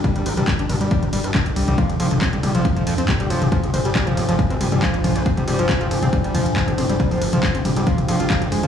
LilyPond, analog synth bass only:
\new Staff \with { instrumentName = "Analog synth bass" } { \clef bass \time 4/4 \key f \dorian \tempo 4 = 138 r16 g,,16 aes,,16 g,,16 r16 g,,16 g,,16 g,,16 r16 aes,,16 g,,16 g,,16 r16 c,16 c,16 c,16 | r16 f,,16 f,,16 f,,16 r16 f,,16 f,,16 f,,16 r16 f,16 f,16 f,16 r16 f,,16 f,,16 f,,16 | r16 f,,16 g,,16 f,,16 r16 f,,16 f,,16 f,,16 r16 g,,16 f,,16 f,,16 r16 bes,,16 bes,,16 bes,,16 | r16 f,,16 f,,16 f,,16 r16 f,,16 f,,16 f,,16 r16 f,16 f,16 f,16 r16 f,,16 f,,16 f,,16 |
r16 f,,16 g,,16 f,,16 r16 f,,16 f,,16 f,,16 r16 f,,16 f,,16 f,,16 r16 f,,16 f,16 f,,16 | }